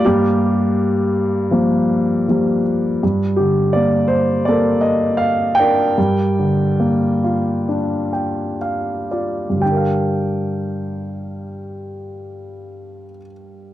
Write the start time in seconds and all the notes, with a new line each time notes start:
0.05 G2 A#3 G4
1.51 F3 G3 A#3
2.28 F3 G3 A#3
3.03 G2
3.36 D3 G4
3.73 A#3 D5
4.08 C5
4.45 A#3 A4 A#4 D5
4.81 D#5
5.17 F5
5.55 G5
5.59 D4 A#4 D5
5.98 G2
6.39 D3
6.80 A#3
7.24 F4
7.69 D4
8.13 G5
8.61 F5
9.11 F4 D5
9.50 G2
9.55 D3
9.60 G3 G5
9.65 D4
9.71 A#4
9.77 F5